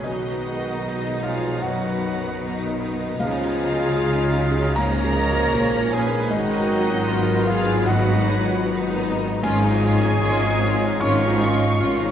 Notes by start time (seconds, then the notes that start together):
Already playing: G#4
0.04 B1 B2 D#3 F#3 B3 D#4 F#4 B4 D#5
0.31 B4
0.45 G#3 B3
0.58 A#4
0.83 F#3 G#3 B4 D#5
1.10 D#5
1.22 F3 F4 G#4 C#5 F5
1.37 B4
1.62 F#2 D#3 F#3 F#4 B4 F#5
1.89 B4
2.01 B3
2.15 A#4
2.40 D#3 D#4 B4
2.67 D#5
2.79 D#4 F#4 D#5
2.93 B4
3.17 C#2 C#3 F3 F4 G#4 F5
3.46 G#4
3.58 G#3
3.72 F#4
3.96 G#3 D#4 G#4
4.24 C#5
4.36 F#3 C#5
4.52 G#4
4.76 G#2 F3 A#3 C#4 A#4 C#5 F5 A#5
5.04 G#4
5.15 G#3 D#5
5.30 F#4
5.53 A#1 A#2 C#4 D#4 G#4 C#5
5.80 C#5
5.91 G#3 G#4 A#4 G#5
5.95 C#4 B4
6.07 G#4
6.31 G#1 G#2 D#3 G#3 D#4 F#4 B4 D#5
6.58 F#4
6.71 F#3
6.84 F4
7.08 F#3 B3 D#4 F4 A#4
7.37 B4
7.47 F4 G#4 B4 F5
7.51 F4 G#4
7.62 F#4
7.86 D#3 F#3 D#4 F#4 B4 D#5 F#5
8.14 F#4
8.26 F#3 C#5
8.39 F4
8.63 D#3 B3 D#4 F#4 B4
8.91 B4
9.04 B4 D#5
9.17 F#4
9.42 G#1 G#2 D#3 G#3 C#4 F4 G#4 C#5 F5 G#5
9.62 F3 D#4 F4
9.69 F4
9.81 D#3 F3 C#4 F4 D#5
9.95 D#4
10.02 F3 D#4 F4
10.20 G#1 G#2 D#3 C#4 D#4 F4
10.41 F3 D#4 F4
10.47 C#5
10.61 D#3 C#4 F4 C#5
10.74 F4
10.81 F3 D#4 F4
11.00 G#1 G#2 D#3 C#4 F4 C#5 F5 C#6
11.22 F3 D#4 F4
11.27 F4
11.40 D#3 F3 C#4 F4 D#5
11.53 D#4
11.60 F3 D#4 F4
11.78 G#1 G#2 D#3 C#4 F4 F5
11.98 F3 D#4 F4
12.05 C#5